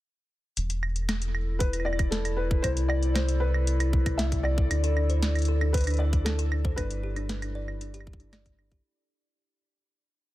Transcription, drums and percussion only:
0.57 closed hi-hat
0.70 closed hi-hat
0.83 claves
0.96 closed hi-hat
1.09 snare, closed hi-hat, claves
1.22 closed hi-hat
1.35 claves
1.60 kick, closed hi-hat
1.73 closed hi-hat, claves
1.80 claves
1.86 claves
1.93 claves
1.99 kick, closed hi-hat, claves
2.12 snare, closed hi-hat
2.25 closed hi-hat, claves
2.51 kick
2.64 kick, closed hi-hat, claves
2.77 closed hi-hat
2.90 claves
3.03 closed hi-hat
3.16 snare, closed hi-hat, claves
3.29 closed hi-hat
3.54 claves
3.67 closed hi-hat
3.80 closed hi-hat, claves
3.93 kick
4.06 kick, closed hi-hat, claves
4.19 snare, closed hi-hat
4.32 kick, closed hi-hat
4.45 claves
4.58 kick
4.71 closed hi-hat, claves
4.84 closed hi-hat
4.97 claves
5.10 closed hi-hat
5.23 snare, closed hi-hat
5.35 closed hi-hat, claves
5.39 closed hi-hat
5.42 closed hi-hat
5.45 closed hi-hat
5.61 claves
5.74 kick, closed hi-hat
5.77 closed hi-hat
5.81 closed hi-hat
5.84 closed hi-hat
5.87 closed hi-hat, claves
5.90 closed hi-hat
5.94 closed hi-hat
5.97 closed hi-hat
6.13 kick, closed hi-hat
6.26 snare, closed hi-hat, claves
6.39 closed hi-hat
6.52 claves
6.65 kick
6.78 kick, closed hi-hat, claves
6.91 closed hi-hat
7.16 closed hi-hat, claves
7.29 snare, closed hi-hat
7.42 closed hi-hat, claves
7.68 claves
7.81 closed hi-hat
7.94 closed hi-hat
8.01 claves
8.07 kick
8.13 kick
8.20 closed hi-hat
8.33 snare, closed hi-hat, claves
8.46 kick, closed hi-hat
8.59 claves
8.72 kick, closed hi-hat

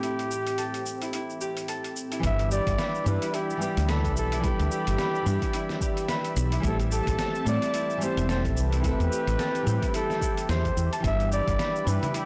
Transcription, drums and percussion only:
0.03 closed hi-hat, shaker
0.19 closed hi-hat, shaker
0.31 shaker
0.47 closed hi-hat, shaker
0.58 closed hi-hat, shaker
0.74 closed hi-hat, shaker
0.86 shaker
1.02 closed hi-hat, shaker
1.13 closed hi-hat, shaker
1.30 shaker
1.41 shaker
1.57 closed hi-hat, shaker
1.68 closed hi-hat, shaker
1.84 closed hi-hat, shaker
1.96 shaker
2.12 closed hi-hat, shaker
2.23 kick, closed hi-hat, shaker
2.39 closed hi-hat, shaker
2.51 shaker
2.67 kick, closed hi-hat, shaker
2.78 snare, closed hi-hat, shaker
2.95 shaker
3.06 shaker
3.22 closed hi-hat, shaker
3.34 closed hi-hat, shaker
3.50 shaker
3.62 shaker
3.77 closed hi-hat, shaker
3.89 snare, closed hi-hat, shaker
4.04 kick, closed hi-hat, shaker
4.17 shaker
4.32 closed hi-hat, shaker
4.44 kick, closed hi-hat, shaker
4.60 closed hi-hat, shaker
4.71 shaker
4.87 closed hi-hat, shaker
4.98 snare, closed hi-hat, shaker
5.15 shaker
5.27 shaker
5.42 kick, closed hi-hat, shaker
5.53 closed hi-hat, shaker
5.69 snare, shaker
5.81 kick, shaker
5.97 closed hi-hat, shaker
6.08 snare, closed hi-hat, shaker
6.25 closed hi-hat, shaker
6.36 shaker
6.52 closed hi-hat, shaker
6.63 kick, closed hi-hat, shaker
6.80 closed hi-hat, shaker
6.92 shaker
7.07 kick, closed hi-hat, shaker
7.19 snare, closed hi-hat, shaker
7.35 shaker
7.47 shaker
7.62 closed hi-hat, shaker
7.74 closed hi-hat, shaker
7.90 shaker
8.02 shaker
8.17 closed hi-hat, shaker
8.29 snare, closed hi-hat, shaker
8.45 kick, closed hi-hat, shaker
8.57 shaker
8.72 closed hi-hat, shaker
8.84 kick, closed hi-hat, shaker
9.00 closed hi-hat, shaker
9.12 shaker
9.27 closed hi-hat, shaker
9.39 snare, closed hi-hat, shaker
9.55 closed hi-hat, shaker
9.67 shaker
9.82 kick, closed hi-hat, shaker
9.94 closed hi-hat, shaker
10.10 snare, shaker
10.21 kick, shaker
10.37 closed hi-hat, shaker
10.49 snare, closed hi-hat, shaker
10.65 kick, closed hi-hat, shaker
10.77 shaker
10.93 closed hi-hat, shaker
11.04 kick, closed hi-hat, shaker
11.20 closed hi-hat, shaker
11.32 shaker
11.47 kick, closed hi-hat, shaker
11.59 snare, closed hi-hat, shaker
11.76 shaker
11.87 shaker
12.03 closed hi-hat, low conga, shaker
12.14 closed hi-hat, shaker

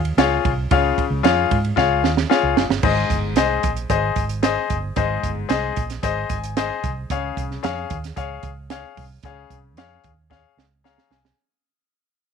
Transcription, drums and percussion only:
0.05 ride
0.18 snare, ride
0.45 kick, ride
0.71 kick, ride
0.98 kick, ride
1.24 snare, ride
1.51 kick, ride
1.64 ride
1.77 kick, snare
2.04 snare
2.17 snare
2.31 snare
2.57 snare
2.70 snare
2.83 kick, crash
3.10 kick, closed hi-hat
3.36 snare, closed hi-hat
3.63 kick, closed hi-hat
3.77 closed hi-hat
3.90 kick, closed hi-hat
4.16 kick, closed hi-hat
4.29 closed hi-hat
4.43 snare, closed hi-hat
4.70 kick, closed hi-hat
4.96 kick, closed hi-hat
5.23 kick, closed hi-hat
5.50 snare, closed hi-hat
5.76 kick, closed hi-hat
5.90 snare, closed hi-hat
6.03 kick, closed hi-hat
6.30 kick, closed hi-hat
6.44 closed hi-hat
6.57 snare, closed hi-hat
6.84 kick, closed hi-hat
7.10 kick, closed hi-hat
7.37 kick, closed hi-hat
7.51 snare
7.63 snare, closed hi-hat
7.90 kick, closed hi-hat
8.04 snare, closed hi-hat
8.17 kick, closed hi-hat
8.43 kick, closed hi-hat
8.70 snare, closed hi-hat
8.97 kick, open hi-hat
9.23 kick, closed hi-hat
9.50 kick, closed hi-hat
9.77 snare, closed hi-hat
10.04 kick, closed hi-hat
10.31 kick, snare
10.58 snare
10.85 snare
10.98 snare
11.11 snare
11.25 snare

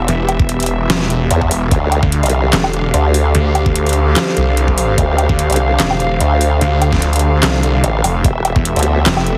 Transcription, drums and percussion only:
0.08 closed hi-hat
0.29 closed hi-hat, low woodblock
0.39 kick
0.49 closed hi-hat
0.60 closed hi-hat
0.63 closed hi-hat
0.66 closed hi-hat
0.90 snare, closed hi-hat
1.10 closed hi-hat
1.31 closed hi-hat
1.42 kick
1.51 open hi-hat
1.71 kick, closed hi-hat
1.92 closed hi-hat, low woodblock
2.03 kick
2.12 closed hi-hat
2.23 closed hi-hat
2.26 closed hi-hat
2.30 closed hi-hat
2.53 snare, clap, closed hi-hat
2.64 low woodblock
2.73 closed hi-hat
2.94 closed hi-hat
3.14 open hi-hat
3.35 closed hi-hat
3.55 closed hi-hat, low woodblock
3.66 kick
3.76 closed hi-hat
3.87 closed hi-hat
3.89 closed hi-hat
3.93 closed hi-hat
4.16 snare, clap, closed hi-hat
4.37 closed hi-hat
4.57 closed hi-hat
4.68 kick
4.78 open hi-hat
4.98 kick, closed hi-hat
5.18 closed hi-hat, low woodblock
5.29 kick
5.39 closed hi-hat
5.50 closed hi-hat
5.52 closed hi-hat
5.56 closed hi-hat
5.80 snare, clap, closed hi-hat
5.91 low woodblock
6.00 closed hi-hat
6.20 closed hi-hat
6.41 open hi-hat
6.61 closed hi-hat
6.82 closed hi-hat, low woodblock
6.93 kick, snare
7.02 closed hi-hat
7.13 closed hi-hat
7.16 closed hi-hat
7.19 closed hi-hat
7.43 snare, clap, closed hi-hat
7.63 closed hi-hat
7.84 closed hi-hat
8.04 open hi-hat, low woodblock
8.24 kick, closed hi-hat
8.45 closed hi-hat, low woodblock
8.56 kick
8.65 closed hi-hat
8.76 closed hi-hat
8.79 closed hi-hat
8.83 closed hi-hat
9.06 snare, clap, closed hi-hat
9.17 low woodblock
9.27 closed hi-hat

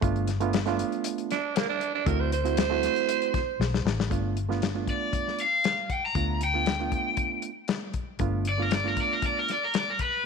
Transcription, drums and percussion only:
0.02 kick, closed hi-hat
0.16 closed hi-hat
0.28 snare, closed hi-hat
0.41 closed hi-hat
0.53 snare, closed hi-hat
0.66 snare, closed hi-hat
0.79 closed hi-hat
0.92 closed hi-hat
1.04 closed hi-hat
1.18 closed hi-hat
1.31 snare, closed hi-hat
1.56 snare, closed hi-hat
1.81 closed hi-hat
2.06 kick, closed hi-hat
2.32 closed hi-hat
2.45 closed hi-hat
2.57 snare, closed hi-hat
2.83 snare, closed hi-hat
2.96 closed hi-hat
3.09 closed hi-hat
3.22 closed hi-hat
3.34 kick, snare, closed hi-hat
3.61 snare
3.74 snare
3.87 snare
4.00 snare
4.11 kick, closed hi-hat
4.37 closed hi-hat
4.51 snare
4.62 snare, closed hi-hat
4.87 kick, closed hi-hat
5.13 kick, closed hi-hat
5.28 snare
5.39 closed hi-hat
5.64 snare, closed hi-hat
5.90 kick, closed hi-hat
6.15 kick, closed hi-hat
6.41 closed hi-hat
6.66 snare, closed hi-hat
6.92 kick, closed hi-hat
7.17 kick, closed hi-hat
7.42 closed hi-hat
7.68 snare, closed hi-hat
7.94 kick, closed hi-hat
8.19 kick, closed hi-hat
8.45 closed hi-hat
8.71 snare, closed hi-hat
8.97 kick, closed hi-hat
9.22 kick, closed hi-hat
9.48 snare, closed hi-hat
9.74 snare, closed hi-hat
9.99 kick, closed hi-hat

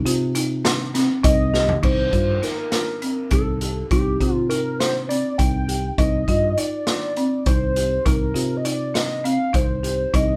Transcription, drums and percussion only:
0.06 closed hi-hat
0.35 closed hi-hat
0.65 snare, closed hi-hat
0.95 snare, closed hi-hat
1.24 kick, closed hi-hat
1.54 snare
1.69 floor tom
1.83 kick, crash
2.13 kick, closed hi-hat
2.43 snare, closed hi-hat
2.72 snare, closed hi-hat
3.02 closed hi-hat
3.31 kick, closed hi-hat
3.61 closed hi-hat
3.91 kick, closed hi-hat
4.21 kick, closed hi-hat
4.50 closed hi-hat
4.80 snare, closed hi-hat
5.10 closed hi-hat
5.39 kick, closed hi-hat
5.69 closed hi-hat
5.98 kick, closed hi-hat
6.28 kick, closed hi-hat
6.58 closed hi-hat
6.87 snare, closed hi-hat
7.16 closed hi-hat
7.46 kick, closed hi-hat
7.76 closed hi-hat
8.06 kick, closed hi-hat
8.36 closed hi-hat
8.65 closed hi-hat
8.95 snare, closed hi-hat
9.25 closed hi-hat
9.54 kick, closed hi-hat
9.84 closed hi-hat
10.14 kick, closed hi-hat

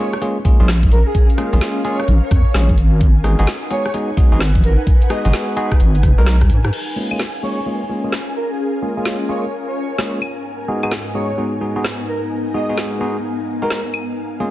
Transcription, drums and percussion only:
0.13 cross-stick
0.22 closed hi-hat
0.45 kick, open hi-hat
0.68 snare, closed hi-hat
0.83 kick
0.91 open hi-hat
1.15 kick, closed hi-hat
1.30 open hi-hat
1.38 cross-stick, open hi-hat
1.53 closed hi-hat
1.61 snare, closed hi-hat
1.85 open hi-hat
2.00 cross-stick
2.08 closed hi-hat
2.31 kick, cross-stick, open hi-hat
2.54 snare, closed hi-hat
2.69 kick
2.78 open hi-hat
3.01 kick, closed hi-hat
3.24 cross-stick, open hi-hat
3.39 closed hi-hat
3.47 snare, closed hi-hat
3.71 open hi-hat
3.86 cross-stick
3.94 closed hi-hat
4.17 kick, open hi-hat
4.40 snare, closed hi-hat
4.55 kick
4.64 open hi-hat
4.87 kick, closed hi-hat
5.02 open hi-hat
5.10 cross-stick, open hi-hat
5.25 closed hi-hat
5.33 snare, closed hi-hat
5.57 open hi-hat
5.72 kick, cross-stick
5.80 closed hi-hat
5.95 closed hi-hat
6.03 kick, cross-stick, open hi-hat
6.26 cross-stick, snare, closed hi-hat
6.41 kick, cross-stick
6.50 open hi-hat
6.65 cross-stick, closed hi-hat
6.73 crash
7.11 claves
7.19 snare
8.12 snare
9.05 snare
9.98 snare
10.22 claves
10.83 claves
10.91 snare
11.85 snare
12.78 snare
13.70 snare
13.94 claves

